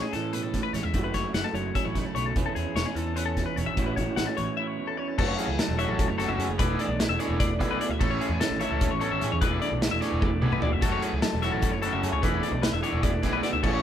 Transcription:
Already playing: A2 C#4 E4 G#4
0.02 G#4
0.13 A2 E3 A4, snare, closed hi-hat
0.33 B2 B4, closed hi-hat
0.43 A4
0.54 A2, kick, snare, closed hi-hat
0.63 B4
0.73 A1 G#2 C#5, snare, closed hi-hat
0.83 E2 E5
0.94 F#1 F#2 A3 E4 F#4, kick, closed hi-hat
1.04 B4
1.14 F#1 E4 C#5, kick, snare, closed hi-hat
1.34 F#1 A3 F#5, snare, closed hi-hat
1.44 A4
1.53 F#1 F#3 C#5, closed hi-hat
1.74 C#4 E5, kick, snare, closed hi-hat
1.84 A1 E4 C#5
1.94 C#3, kick, snare, closed hi-hat
2.05 A4
2.14 B1 A3 C#5, closed hi-hat
2.26 A4
2.35 E1 E2 B3 C#4 E4, kick, closed hi-hat
2.46 A4
2.55 E2 C#4 G#4, closed hi-hat
2.75 E1 A3 C#5, snare, closed hi-hat
2.86 B3 G#4
2.95 E2 E3 A4, closed hi-hat
3.15 C#4 B4, closed hi-hat
3.26 A4
3.35 E2, kick, snare, closed hi-hat
3.46 B4
3.56 E1 B3 C#5, closed hi-hat
3.66 G#1 E5
3.77 A1 A2 C#4 E4 F#4, kick, closed hi-hat
3.86 B4
3.96 A1 E4 C#5, kick, closed hi-hat
4.16 A1 C#4 F#5, snare, closed hi-hat
4.27 A4
4.37 A1 E3 C#5, closed hi-hat
4.57 E4 E5
4.67 C#5
4.78 E2
4.87 A4
4.97 C#4 C#5
5.08 A4
5.18 F#1 F#2 A3 C#4 F#4 A4 C#5, kick, crash
5.28 C#5
5.39 E4 G#4, closed hi-hat
5.48 C#2
5.59 F#3 A3 A4, snare, closed hi-hat
5.69 E1
5.79 C#4 E4 F#4 A4 C#5 E5, closed hi-hat
5.88 A1 A4
5.99 A3, kick, closed hi-hat
6.08 F#1 C#5
6.18 C#3 C#4 F#4 A4 C#5, snare, closed hi-hat
6.28 F#1 E5
6.38 F#2 G#4, closed hi-hat
6.49 F#1 C#5
6.58 E1 E2 A3 B3 E4 G#4 B4 D5, kick, closed hi-hat
6.79 D4 D5, closed hi-hat
6.89 B1
7.00 E3 A3 B4, snare, closed hi-hat
7.08 E1 E5
7.19 B3 D4 E4 G#4 C#5 D5, snare, closed hi-hat
7.29 E1
7.40 A3 D5, kick, closed hi-hat
7.60 B1 B2 B3 E4 G#4 B4 D5, kick, closed hi-hat
7.71 B4
7.81 F#4 D5, closed hi-hat
7.89 D2 E5
8.00 A1 A2 C#4 E4 A4 C#5, kick, crash
8.11 C#5
8.21 E4 G#4, closed hi-hat
8.29 E2
8.40 E3 C#4 A4, snare, closed hi-hat
8.50 G#1
8.60 C#4 E4 A4 C#5 E5, closed hi-hat
8.71 C#2 A4
8.81 C#4, kick, closed hi-hat
8.91 A1 C#5
9.01 E2 C#4 E4 A4 C#5, closed hi-hat
9.11 A1 E5
9.21 A2 G#4, closed hi-hat
9.32 E2 C#5
9.41 E1 E2 A3 B3 E4 G#4 B4 D5, kick, closed hi-hat
9.62 D4 D5, closed hi-hat
9.72 B1
9.82 E3 A3 B4, snare, closed hi-hat
9.91 E1 E5
10.01 B3 D4 E4 G#4 C#5 D5, snare, closed hi-hat
10.12 E1
10.22 A3 D5, kick, high tom
10.42 B1 B2 B3 E4 G#4 B4 D5, mid tom
10.52 B4, mid tom
10.62 F#4 D5, floor tom
10.72 F1 E5
10.81 F#1 F#2 A3 C#4 F#4 A4 C#5, kick, closed hi-hat, crash
10.92 C#5
11.02 E4 G#4, closed hi-hat
11.13 C#2
11.22 F#3 A3 A4, snare, closed hi-hat
11.33 E1
11.42 C#4 E4 F#4 A4 C#5 E5, snare, closed hi-hat
11.52 A1 A4
11.62 A3, kick, closed hi-hat
11.72 F#1 C#5
11.82 C#3 C#4 F#4 A4 C#5, closed hi-hat
11.93 F#1 E5
12.03 F#2 G#4, closed hi-hat
12.12 C#2 C#5
12.22 E1 E2 A3 B3 E4 G#4 B4 D5, kick, closed hi-hat
12.43 D4 D5, closed hi-hat
12.51 B1
12.62 E3 A3 B4, snare, closed hi-hat
12.73 E1 E5
12.83 B3 D4 E4 G#4 C#5 D5, closed hi-hat
12.93 E1
13.03 A3 D5, kick, closed hi-hat
13.22 B1 B2 B3 E4 G#4 B4 D5, kick, snare, closed hi-hat
13.33 B4
13.43 F#4 D5, snare, closed hi-hat
13.53 D2 E5
13.63 A1 A2 E3 C#4 E4 G#4 A4 C#5, kick, crash
13.73 C#5

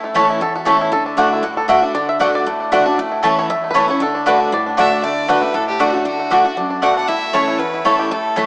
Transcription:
Already playing: A2 E4
0.04 A3
0.14 E3 A3 C#4 E4 C#5 A5
0.30 E4
0.41 E2 A4
0.55 F#4
0.65 E3 A3 C#4 E4 C#5 A5
0.81 E4
0.92 D3 A4
1.06 D4
1.17 D3 A3 D4 F#4 D5 F#5
1.33 E4
1.43 A2 F#4
1.57 A4
1.68 D3 A3 D4 F#4 D5 E5 F#5
1.82 D4 F#4
1.95 D3 D5
2.09 E5
2.20 D3 A3 D4 F#4 D5 F#5
2.35 D5
2.47 A2 A3
2.60 D4
2.72 D3 A3 D4 F#4 D5 F#5
2.86 D4 F#4
2.98 A2 A3
3.12 E4
3.23 E3 A3 C#4 E4 C#5 A5
3.39 C#5
3.50 E2 E5
3.64 A3
3.71 A3 E4 B4
3.75 E3 A3 C#4 E4 C#5 A5
3.88 C#4 E4 C#5
4.00 D3 A4
4.15 D4
4.26 D3 A3 D4 F#4 B4 D5 F#5
4.40 D4
4.52 A2 D5
4.66 D4
4.77 D3 A3 D4 F#4 A4 D5 E5 F#5
4.91 D4
5.03 D3 A3 D5
5.28 D3 A3 D4 F#4 B4 D5 F#5
5.42 A3 D4 F#4
5.54 A2 D4 A4
5.68 A3 G4
5.79 D3 A3 D4 F#4 D5 F#5
5.93 A3 D4 F#4
6.05 D3 D4 F#4
6.19 A3
6.30 D3 A3 D4 F#4 D5 F#5
6.45 D4 F#4
6.57 F#2 D4
6.70 D4
6.82 B2 A3 F#4 D5 F#5
6.96 D4 F#5
7.08 A2 E4 E5
7.33 E3 A3 C#4 E4 C#5 A5
7.48 E4
7.58 E2 C#4 B4
7.74 E4
7.84 E3 A3 C#4 E4 A4 C#5 A5
7.99 G4
8.11 A2 A3 A4
8.36 E3 A3 C#4 E4 C#5 A5

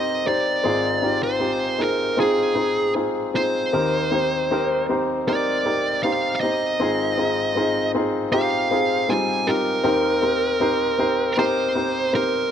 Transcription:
Already playing: D#2 D#3 C4 D#4 G4 A#4 C5 D#5
0.26 C4 D#4 G4 C5 D5
0.64 G#1 G#2 C4 D#4 F4 G#4
1.02 C4 D#4 F4 G4
1.23 C5
1.40 C4 D#4 F4 G4
1.79 C4 D#4 F4 G#4 A#4
2.17 C4 D#4 F4 G#4
2.55 C4 D#4 F4 G#4
2.95 C4 D#4 F4 G#4
3.34 C4 D#4 F4 G#4 C5
3.73 D#2 D#3 C4 D#4 G4 A#4
4.11 C4 D#4 G4 C5
4.51 C4 D#4 G4 A#4
4.89 C4 D#4 G4 C5
5.28 C4 D#4 G4 A#4 D5
5.65 C4 D#4 G4 A#4
6.03 C4 D#4 G4 C5 F5
6.35 F5
6.40 C4 D#4 G4 C5 D#5
6.80 G#1 G#2 C4 D#4 F4 G#4
7.17 C4 D#4 F4 G#4
7.55 C4 D#4 F4 G#4
7.95 C4 D#4 F4 G#4
8.32 C4 D#4 F4 G4 F5
8.71 C4 D#4 F4 G#4
9.09 G3 C4 D#4 F4 G#5
9.47 C4 D#4 F4 G4 A#4
9.84 D#2 D#3 C4 D#4 G4 A#4
10.22 C4 D#4 G4 A#4
10.60 C4 D#4 G4 C5
10.99 C4 D#4 G4 C5
11.37 C4 D#4 G4 A#4 C5
11.75 C4 D#4 G4 C5
12.13 C4 D#4 G4 A#4 C5

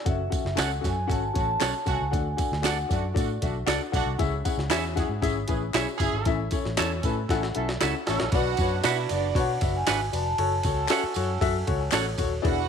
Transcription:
Already playing: G#5 E6
0.05 F#1 C#4 F#4 A4 F#5, kick, closed hi-hat, tambourine
0.09 E5
0.30 C#4 F#4 A4 F#5, kick, closed hi-hat, tambourine
0.45 F#1, snare
0.55 C#2 C#4 F#4 A4 G#5, snare, clap, closed hi-hat, tambourine
0.59 C#5 F#5
0.81 F#2 A3 C#4 F#4 A4 F#5, kick, tambourine
0.85 G#5, snare, closed hi-hat
1.07 G#1 A3 C#4 F#4 A4 F#5, kick, tambourine
1.11 A5, closed hi-hat
1.34 A1 A3 C#4 F#4 A4 C#5, kick, closed hi-hat, tambourine
1.39 A5
1.60 B1 C#4 F#4 A4 C#5 F#5, snare, clap, closed hi-hat, tambourine
1.85 C2 A3 C#4 F#4 A4 F#5, kick, closed hi-hat, tambourine
1.91 G#5
2.01 C#2
2.11 D2 D3 D4 F#4 A4 F#5, kick, closed hi-hat, tambourine
2.37 D4 F#4 A4 F#5, kick, closed hi-hat, tambourine
2.52 D2, snare
2.62 D4 F#4 A4 F#5, snare, clap, closed hi-hat, tambourine
2.66 D5 F#5
2.88 F#2 A3 D4 F#4 A4 D5, kick, closed hi-hat, tambourine
2.92 D4 D5
3.14 A2 A3 D4 F#4 A4 D5, kick, closed hi-hat, tambourine
3.42 B1 A3 D4 F#4 A4 E5, kick, closed hi-hat, tambourine
3.66 C#2 D4 F#4 A4 D5 F#5, snare, clap, closed hi-hat, tambourine
3.92 B1 A3 D4 F#4 A4 F#5, kick, closed hi-hat, tambourine
4.06 C2
4.19 C#2 C#3 C#4 E4 G#4 E5, kick, closed hi-hat, tambourine
4.45 C#4 E4 G#4 F#5, kick, closed hi-hat, tambourine
4.57 C#2, snare
4.70 C#4 E4 G#4 C#5 E5, snare, clap, closed hi-hat, tambourine
4.95 C#4 E4 G#4 F#5, kick, snare, closed hi-hat, tambourine
5.09 G#2
5.21 G#1 C#4 E4 G#4 E5, kick, closed hi-hat, tambourine
5.47 A1 C#4 E4 G#4 B4, kick, closed hi-hat, tambourine
5.74 B1 C#4 E4 G#4 C#5 E5, snare, clap, closed hi-hat, tambourine
5.97 G1 C#4 E4 G#4 E5, kick, closed hi-hat, tambourine
6.13 G#1
6.25 A1 A2 C#4 E4 A4 E5, kick, closed hi-hat, tambourine
6.51 C#4 E4 A4 C#5, kick, closed hi-hat, tambourine
6.65 A1, snare
6.77 E2 C#4 E4 A4 C#5 E5, snare, clap, closed hi-hat, tambourine
7.01 A2 C#4 E4 A4, kick, closed hi-hat, tambourine
7.05 E4 B4
7.27 A1 C#4 E4 A4 F#5, kick, snare, closed hi-hat, tambourine
7.43 snare
7.54 B1 C#4 E4 A4 E5, closed hi-hat
7.69 snare
7.81 C#2 C#4 E4 A4 C#5 E5 F#5, snare, clap, closed hi-hat, tambourine
8.05 A1 C#4 E4 A4, snare, open hi-hat, tambourine
8.09 C#5
8.20 A#1, snare
8.30 B1 B3 D4 F#4 B4 F#5, kick, ride
8.34 B2 F#4 D5, tambourine
8.57 F#2 F#4 B4 C#5, kick, ride, tambourine
8.84 B2 D4 E4 F#4 B4 D5 E5 F#5, snare, clap, ride, tambourine
9.09 F#1 D4 F#4 B4 D5, ride, tambourine
9.35 B2 F#4 B4 C#5, kick, ride, tambourine
9.39 F#5
9.61 F#1 F#4 B4 E5, kick, ride, tambourine
9.76 G#5
9.87 G#1 D4 F#4 B4 E5 F#5, snare, clap, ride, tambourine
10.13 F1 F#4 B4 D5 A5, open hi-hat, ride, tambourine
10.37 F#1 C#4 F#4 A4 C#5, ride
10.63 C#2 F#4 A4 C#5, kick, ride, tambourine
10.89 C#4 F#4 A4 C#5 E5 F#5, snare, clap, ride, tambourine
11.04 muted fingered electric bass stroke
11.14 F#2 F#4 A4 C#5, ride, tambourine
11.41 F#2 F#4 A4 E5, kick, ride, tambourine
11.67 C#2 F#4 A4 C#5 F#5, kick, ride
11.80 G#5
11.92 A1 C#4 F#4 A4 C#5 F#5 A5, snare, clap, ride, tambourine
12.18 D#1 F#4 A4 C#5, kick, open hi-hat, ride, tambourine
12.42 E1 E3 B3 D4 E4 F#4 G#4 B4 D5 F#5, kick, ride

